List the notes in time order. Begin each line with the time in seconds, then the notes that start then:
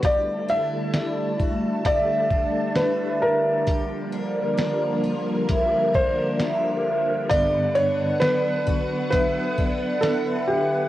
0.03 D3 G3 A3 E4 G4 D5 A5, kick, closed hi-hat
0.49 D4 E5
0.94 D4, snare, closed hi-hat
1.40 F#4, kick
1.85 D4 E4 D5, kick, closed hi-hat
2.30 D4, kick
2.75 E4 B4, snare, closed hi-hat
3.22 A#4
3.67 F3 A#3 G4 A#4, kick, closed hi-hat
4.12 D4
4.57 D4, snare, closed hi-hat
5.04 F4
5.49 E4, kick, closed hi-hat
5.94 D4 C5, kick
6.40 E4, snare, closed hi-hat
7.29 G2 D3 B3 D4 G4 B4 D5 F#5, kick, closed hi-hat
7.75 D4 C#5
8.20 F#3 B3 D4 B4, snare, closed hi-hat
8.67 F#4, kick
9.10 F#3 B3 D4 E4 B4, kick, closed hi-hat
9.58 D4, kick
10.01 B3 D4 E4 A4 B4, snare, closed hi-hat
10.48 G4